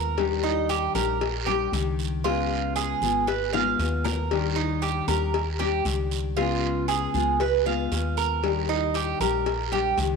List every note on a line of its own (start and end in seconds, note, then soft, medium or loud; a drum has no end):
0.00 0.88 D#2 loud
0.00 0.17 G#3 medium
0.00 0.17 B3 medium
0.00 0.17 F4 medium
0.00 0.17 G#4 medium
0.00 0.42 A#4 medium
0.17 0.94 D#3 medium
0.17 0.95 G3 medium
0.17 0.95 D4 medium
0.17 0.93 G4 medium
0.17 cowbell loud
0.17 long guiro medium
0.43 0.69 D#4 medium
0.69 0.94 G4 medium
0.69 cowbell medium
0.69 short guiro medium
0.95 1.68 A#1 loud
0.95 1.20 G3 medium
0.95 1.20 D4 medium
0.95 1.20 G4 medium
0.95 1.45 A#4 medium
0.95 cowbell medium
0.95 short guiro medium
1.21 muted nylon-string guitar stroke medium
1.21 cowbell loud
1.21 long guiro medium
1.46 1.72 G3 medium
1.46 1.72 D4 medium
1.46 1.72 G4 medium
1.46 1.71 G4 medium
1.46 cowbell medium
1.72 2.95 C#2 loud
1.72 2.23 D#3 medium
1.72 2.24 G3 medium
1.72 2.24 D4 medium
1.72 2.24 G4 medium
1.72 cowbell medium
1.72 short guiro medium
1.99 short guiro medium
2.24 3.01 C#3 medium
2.24 3.01 G#3 medium
2.24 3.01 B3 medium
2.24 2.74 F4 medium
2.24 3.01 F4 medium
2.24 3.01 G#4 medium
2.24 cowbell loud
2.24 long guiro medium
2.76 3.26 G#4 medium
2.76 cowbell medium
2.76 short guiro medium
3.02 3.75 G#1 medium
3.02 3.27 G#3 medium
3.02 3.27 B3 medium
3.02 3.27 F4 medium
3.02 3.27 G#4 medium
3.02 short guiro medium
3.27 3.52 B4 medium
3.27 muted nylon-string guitar stroke medium
3.27 cowbell loud
3.27 long guiro medium
3.53 3.78 G#3 medium
3.53 3.79 B3 medium
3.53 3.79 F4 medium
3.53 3.78 G#4 medium
3.53 4.03 F5 medium
3.53 high bongo medium
3.79 5.02 D#2 loud
3.79 4.30 G#3 medium
3.79 4.30 B3 medium
3.79 4.30 F4 medium
3.79 4.31 G#4 medium
3.79 cowbell medium
3.79 short guiro medium
4.04 4.55 A#4 medium
4.04 low bongo medium
4.04 short guiro medium
4.31 5.07 D#3 medium
4.31 5.08 G3 medium
4.31 5.08 D4 medium
4.31 5.07 G4 medium
4.31 cowbell loud
4.31 long guiro medium
4.56 4.81 D#4 medium
4.82 5.07 G4 medium
4.82 cowbell medium
4.82 short guiro medium
5.08 5.81 D#2 loud
5.08 5.33 G3 medium
5.08 5.33 D4 medium
5.08 5.33 G4 medium
5.08 5.58 A#4 medium
5.08 cowbell medium
5.08 short guiro medium
5.34 muted nylon-string guitar stroke medium
5.34 cowbell loud
5.34 long guiro medium
5.59 5.85 G3 medium
5.59 5.85 D4 medium
5.59 5.85 G4 medium
5.59 cowbell medium
5.85 7.08 C#2 loud
5.85 6.36 D#3 soft
5.85 6.36 G3 medium
5.85 6.37 D4 medium
5.85 6.37 G4 soft
5.85 cowbell medium
5.85 short guiro medium
6.11 short guiro medium
6.37 7.14 C#3 medium
6.37 7.14 G#3 medium
6.37 7.14 B3 medium
6.37 6.87 F4 medium
6.37 7.14 F4 medium
6.37 7.13 G#4 medium
6.37 cowbell loud
6.37 long guiro medium
6.88 7.38 G#4 medium
6.88 cowbell medium
6.88 short guiro medium
7.14 7.88 C#2 loud
7.14 7.40 G#3 medium
7.14 7.40 B3 medium
7.14 7.40 F4 medium
7.14 7.39 G#4 medium
7.14 short guiro medium
7.40 7.66 B4 medium
7.40 muted nylon-string guitar stroke medium
7.40 cowbell medium
7.40 long guiro medium
7.66 7.91 G#3 medium
7.66 7.91 B3 medium
7.66 7.91 F4 medium
7.66 7.91 G#4 medium
7.66 8.16 F5 medium
7.92 9.14 D#2 loud
7.92 8.43 G#3 medium
7.92 8.43 B3 medium
7.92 8.43 F4 medium
7.92 8.43 G#4 medium
7.92 cowbell medium
7.92 short guiro medium
8.17 8.68 A#4 medium
8.17 short guiro medium
8.43 9.20 D#3 medium
8.43 9.20 G3 medium
8.43 9.20 D4 medium
8.43 9.20 G4 medium
8.43 cowbell loud
8.43 long guiro medium
8.69 8.94 D#4 medium
8.94 9.20 G4 medium
8.94 cowbell medium
8.94 short guiro medium
9.20 9.94 A#1 loud
9.20 9.45 G3 medium
9.20 9.46 D4 medium
9.20 9.46 G4 medium
9.20 9.71 A#4 medium
9.20 cowbell medium
9.20 short guiro medium
9.46 muted nylon-string guitar stroke medium
9.46 cowbell loud
9.46 long guiro medium
9.72 9.98 G3 medium
9.72 9.98 D4 medium
9.72 9.97 G4 medium
9.72 9.98 G4 medium
9.72 cowbell medium
9.98 10.16 C#2 loud
9.98 10.16 D#3 soft
9.98 10.16 G3 soft
9.98 10.16 D4 medium
9.98 10.16 G4 medium
9.98 cowbell medium
9.98 short guiro medium